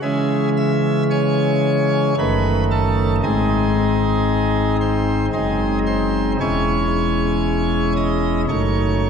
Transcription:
0.02 C#3 E3 G#3 C#4 G#4 E5 G#5
0.57 E5 E6
1.10 C#5 G#5 C#6
2.18 F#1 F#2 D#3 A3 D#4 B4 B5
2.71 A4 A5
3.23 G#1 G#2 G#3 C4 D#4 G#4 D#5 G#5
4.81 C5 C6
5.33 F#1 F#2 G#3 C4 D#4 G#4 D#5 G#5
5.86 C5 C6
6.40 E1 E2 G#3 C#4 E4 C#5 G#5 C#6
7.96 D#5 D#6
8.49 F#1 F#2 A3 D#4 C#5 C#6

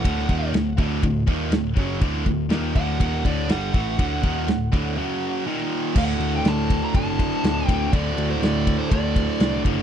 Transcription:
Already playing: F#5
0.04 D2 A2 D3, kick, ride
0.18 snare
0.28 D#2 A#2 D#3, kick, ride
0.53 D2 A2, snare, ride
0.77 D2 A2 D3, kick, ride
1.03 D2 A2, kick, ride
1.27 D#2 A#2 D#3, kick, ride
1.51 D2 A2, snare, ride
1.76 F#1 F#2 C#3 F#3, kick, ride
2.00 D2 A2 D3, kick, ride
2.15 snare
2.25 D2 A2, kick, ride
2.49 D#2 A#2 D#3, snare, ride
2.75 D2 A2 D3 F#5, kick, ride
2.99 D#2 A#2 D#3, kick, ride
3.24 D2 A2 D3 D5, kick, ride
3.48 G1 G2 D3 G3 F#5, snare, ride
3.73 A1 A2 E3 A3, kick, ride
3.97 D2 A2 D3, kick, ride
4.22 D#2 A#2 D#3, kick, ride
4.47 D2 A2, snare, ride
4.72 D2 A2 D3, kick, ride
4.97 F#2 C#3 F#3
5.46 D#2 A#2 D#3
5.95 D2 A2 D3 F#5, kick, crash
6.20 D2, ride
6.36 G5
6.45 D2 A5, snare, ride
6.70 kick, ride
6.84 A#5
6.93 F#1 D2 A2 D3 A5, kick, ride
7.19 kick, ride
7.43 D2, snare, ride
7.67 D2 A2 D3 G5, kick, ride
7.93 D2 A2 D3 D5, kick, ride
8.17 D2, ride
8.31 C5
8.41 D2 D5, snare, ride
8.67 kick, ride
8.78 C5
8.90 D2 A2 D3 D5, kick, ride
9.16 kick, ride
9.40 C2, snare, ride
9.64 F#1 D2 A2 D3, kick, ride

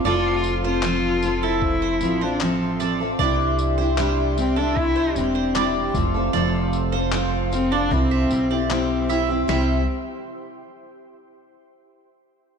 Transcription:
Already playing: A4 C5 F5 C6
0.04 F1 F3 C4 F4 A4 D5
0.44 tambourine
0.64 C4 F4 A4 C5
0.83 F3 C4 F4 A4 C5, clap
1.22 F3 C4 A4 E5, tambourine
1.43 E4 A4
1.62 kick
1.82 C5
2.01 A1 F3 C4 F4 A4, tambourine
2.21 C4 D4 F4 A4 C5
2.41 F3 C4 F4 A4, clap
2.80 F3 C4 F4 A4 D5, tambourine
3.00 C4 F4 A4
3.18 C2 C3 G3 D4 E4 G4 D5, kick
3.59 tambourine
3.78 D4 E4 G4 C5
3.97 C3 G3 D4 E4 G4 C5, clap
4.37 G3 C4 D4 E4 G4, tambourine
4.56 D4 E4 G4 A4
4.60 D4
4.77 E4, kick
4.96 C5
5.16 E1 G3 C4 D4 E4 G4, tambourine
5.35 C5
5.55 C3 G3 D4 E4 G4 D5, clap
5.93 F1 F3 C4 F4 A4 C5 F5, kick, tambourine
6.14 C4 F4 A4
6.33 F1 F3 C4 F4 A4 D5
6.73 tambourine
6.92 C4 F4 A4 C5
7.12 F3 C4 F4 A4 C5, clap
7.52 F3 C4 F4 A4, tambourine
7.71 C4 D4 F4 A4 D5
7.91 C2 C3 G3 C4 E4 G4 E5, kick
8.11 E5
8.30 B1 G3 C4 E4 G4, tambourine
8.50 C4 E4 G4 D5
8.70 G3 C4 E4 G4, clap
9.09 G3 C4 E4 G4 E5, tambourine
9.29 C4 E4 G4
9.48 C2 C3 G3 C4 E4 G4 E5, snare

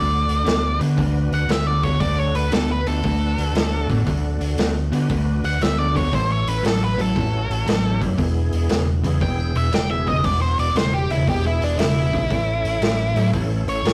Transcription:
Already playing: D2 D3 A3 D4 F#4 A4 D5
0.28 D2, open hi-hat
0.45 D2 D3 B3, snare, open hi-hat
0.79 D3 B3 D4 F#4 B4, open hi-hat
0.97 D2 D3 A3, kick, open hi-hat
1.31 D2 F#5, open hi-hat
1.48 D2 D3 B3 E5, snare, open hi-hat
1.66 D4 F#4 A4 D5
1.83 D3 B3 C#5, kick, open hi-hat
2.00 D2 D3 A3 D4 F#4 A4 D5, kick, open hi-hat
2.19 C#5
2.35 D2 B4, open hi-hat
2.52 D2 D3 B3 A4, snare, open hi-hat
2.72 B4
2.86 D2 D3 B3 D4 F#4 A4 B4, open hi-hat
3.04 D2 D3 A3, kick, open hi-hat
3.38 D2, open hi-hat
3.54 D2 D3 B3, snare, open hi-hat
3.71 D4 F#4 A4
3.90 A2 D3 B3, kick, open hi-hat
4.06 D2 D3 A3 D4 F#4 A4, kick, open hi-hat
4.40 D2, open hi-hat
4.58 D2 D3 B3, snare, open hi-hat
4.92 D3 B3 D4 F#4 B4, open hi-hat
5.09 D2 D3 A3, kick, open hi-hat
5.43 D2 F#5, open hi-hat
5.61 D2 D3 B3 E5, snare, open hi-hat
5.78 D4 F#4 A4 D5
5.95 D3 B3 C#5, kick, open hi-hat
6.12 A1 A2 E3 C#4 E4 A4 C5, kick, open hi-hat
6.32 C#5
6.47 A1 B4, open hi-hat
6.63 A1 A2 F#3 A4, snare, open hi-hat
6.84 B4
6.98 A1 A2 F#3 C#4 E4 F#4 A4, open hi-hat
7.16 A1 A2 E3, kick, open hi-hat
7.50 A1, open hi-hat
7.67 A1 A2 F#3, snare, open hi-hat
7.84 C#4 E4 G4
8.01 F#1 A2 F#3, kick, open hi-hat
8.17 E1 E2 B2 B3 E4 G#4, kick, open hi-hat
8.53 E1, open hi-hat
8.69 E1 E2 C#3, snare, open hi-hat
9.02 E2 C#3 B3 E4 G#4, open hi-hat
9.20 E1 E2 B2 G5, kick, open hi-hat
9.55 E1 E5, open hi-hat
9.72 E1 E2 C#3 G5, snare, open hi-hat
9.88 B3 E4 G#4 E5
10.06 E2 C#3 D#5, kick, open hi-hat
10.23 E1 E2 B2 B3 E4 F#4 D5, kick, open hi-hat
10.41 C5
10.59 E1 D5, open hi-hat
10.75 E1 E2 C#3 C5, snare, open hi-hat
10.94 G4
11.08 E1 E2 C#3 B3 E4 G#4, open hi-hat
11.27 E1 E2 B2 G4, kick, open hi-hat
11.47 E4
11.62 E1 D4, open hi-hat
11.79 E1 E2 C#3 E4, snare, open hi-hat
11.94 B3 E4 G#4
12.13 B1 E2 C#3, kick, open hi-hat
12.28 A1 A2 E3 C#4 E4 A4, kick, open hi-hat
12.64 A1, open hi-hat
12.81 A1 A2 F#3, snare, open hi-hat
13.15 A2 F#3 C#4 E4 A4, open hi-hat
13.33 A1 A2 E3, kick, open hi-hat
13.67 A1 C#5, open hi-hat
13.84 A1 A2 F#3, snare, open hi-hat

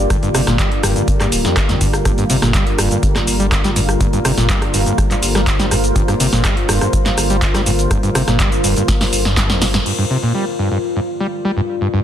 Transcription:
Already playing: D3 G3 A#3 F4 G4 A#4 D5
0.10 G1 G2, kick, cross-stick, closed hi-hat, shaker
0.23 G2, closed hi-hat, shaker
0.35 C3, cross-stick, open hi-hat, shaker
0.47 G1 A#2, cross-stick, snare, closed hi-hat, shaker
0.59 G3, kick, clap, closed hi-hat, shaker
0.72 closed hi-hat
0.83 F1 G2, cross-stick, open hi-hat, shaker
0.96 G2, closed hi-hat, shaker
1.08 kick, closed hi-hat, shaker
1.20 G2, cross-stick, clap, closed hi-hat, shaker
1.32 D1, open hi-hat, shaker
1.45 F2, snare, closed hi-hat, shaker
1.57 kick, cross-stick, clap, closed hi-hat, shaker
1.69 G1 F2, snare, closed hi-hat, shaker
1.81 G2, kick, open hi-hat, shaker
1.93 cross-stick, closed hi-hat, shaker
2.05 G1 G2 F4, kick, cross-stick, closed hi-hat, shaker
2.18 G2, closed hi-hat, shaker
2.30 C3, open hi-hat, shaker
2.42 G1 A#2, cross-stick, snare, closed hi-hat, shaker
2.54 G3, kick, clap, closed hi-hat, shaker
2.67 closed hi-hat
2.79 F1 G2, cross-stick, open hi-hat, shaker
2.91 G2, closed hi-hat, shaker
3.03 kick, closed hi-hat, shaker
3.15 G2, cross-stick, snare, clap, closed hi-hat, shaker
3.27 G1, open hi-hat, shaker
3.40 G3, closed hi-hat, shaker
3.52 kick, cross-stick, clap, closed hi-hat, shaker
3.64 G1 G3, snare, closed hi-hat, shaker
3.76 G2, open hi-hat, shaker
3.89 cross-stick, closed hi-hat, shaker
4.01 G1 G2, kick, closed hi-hat, shaker
4.13 G2, closed hi-hat, shaker
4.24 C3 C5, cross-stick, open hi-hat, shaker
4.37 G1 A#2, snare, closed hi-hat, shaker
4.49 G3, kick, clap, closed hi-hat, shaker
4.62 cross-stick, closed hi-hat
4.74 F1 G2, open hi-hat, shaker
4.86 G2, closed hi-hat, shaker
4.98 kick, cross-stick, closed hi-hat, shaker
5.11 G2, clap, closed hi-hat, shaker
5.23 G1, open hi-hat, shaker
5.35 G3, cross-stick, snare, closed hi-hat, shaker
5.47 kick, clap, closed hi-hat, shaker
5.59 G1 G3, snare, closed hi-hat, shaker
5.71 G2, cross-stick, open hi-hat, shaker
5.84 closed hi-hat, shaker
5.96 G1 G2, kick, closed hi-hat, shaker
6.08 G2, cross-stick, closed hi-hat, shaker
6.20 C3, open hi-hat, shaker
6.33 G1 A#2, snare, closed hi-hat, shaker
6.44 G3, kick, cross-stick, clap, closed hi-hat, shaker
6.57 closed hi-hat
6.69 F1 G2, cross-stick, open hi-hat, shaker
6.81 G2, cross-stick, closed hi-hat, shaker
6.93 kick, closed hi-hat, shaker
7.06 G2, snare, clap, closed hi-hat, shaker
7.18 G1, cross-stick, open hi-hat, shaker
7.30 G3, closed hi-hat, shaker
7.42 kick, clap, closed hi-hat, shaker
7.55 G1 G3, cross-stick, snare, closed hi-hat, shaker
7.66 G2, open hi-hat, shaker
7.79 closed hi-hat, shaker
7.91 G1 G2, kick, cross-stick, closed hi-hat, shaker
8.03 G2, closed hi-hat, shaker
8.15 C3, cross-stick, open hi-hat, shaker
8.28 G1 A#2, cross-stick, snare, closed hi-hat, shaker
8.40 G3, kick, clap, closed hi-hat, shaker
8.52 closed hi-hat, shaker
8.64 F1 G2, open hi-hat, shaker
8.77 G2, closed hi-hat, shaker
8.88 kick, snare, closed hi-hat, shaker
9.01 G2, snare, open hi-hat, shaker
9.13 G1, open hi-hat, shaker
9.25 G2, snare, shaker
9.37 kick, snare, clap, closed hi-hat, shaker
9.50 G1 F2, snare, closed hi-hat, shaker
9.62 D3, snare, open hi-hat, shaker
9.74 G2, snare, closed hi-hat, shaker
9.86 G2 D3 G3 A#3 G4, crash
9.98 G2
10.10 C3
10.19 A#2 D5
10.35 G3
10.59 G2
10.71 G2
10.96 G2
11.20 G3
11.45 G3
11.57 G2
11.81 G2
11.94 G2

